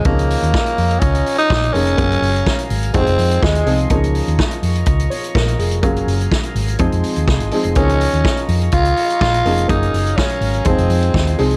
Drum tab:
HH |xxox-xoxxxox-xox|xxox-xoxxxox-xox|xxox-xoxxxox-xox|xxox-xoxxxox-xox|
SD |----o-------o---|----o-------o---|----o-------o---|----o-------o---|
BD |o---o---o---o---|o---o---o---o---|o---o---o---o---|o---o---o---o---|

HH |xxox-xoxxxox-xox|xxox-xoxxxox-xox|
SD |----o-------o---|----o-------o---|
BD |o---o---o---o---|o---o---o---o---|